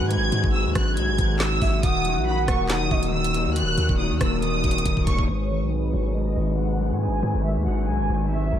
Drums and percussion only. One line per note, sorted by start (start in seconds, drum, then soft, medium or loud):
0.11 closed hi-hat medium
0.32 closed hi-hat medium
0.44 kick medium
0.75 kick loud
0.75 cross-stick loud
0.75 closed hi-hat medium
0.97 closed hi-hat medium
1.18 kick medium
1.18 closed hi-hat medium
1.39 snare loud
1.39 clap medium
1.39 closed hi-hat medium
1.62 kick loud
1.62 open hi-hat medium
1.83 kick loud
1.83 closed hi-hat medium
2.05 closed hi-hat medium
2.48 kick loud
2.48 cross-stick loud
2.48 closed hi-hat medium
2.69 snare loud
2.69 clap medium
2.69 closed hi-hat medium
2.91 kick medium
3.03 closed hi-hat medium
3.24 closed hi-hat medium
3.34 closed hi-hat medium
3.56 closed hi-hat medium
3.78 closed hi-hat medium
3.89 kick loud
4.21 kick loud
4.21 cross-stick loud
4.21 closed hi-hat medium
4.42 closed hi-hat medium
4.64 kick medium
4.64 closed hi-hat soft
4.71 closed hi-hat medium
4.78 closed hi-hat medium
4.85 kick medium
4.85 closed hi-hat medium
4.97 kick medium
5.07 kick loud
5.07 closed hi-hat medium
5.18 kick loud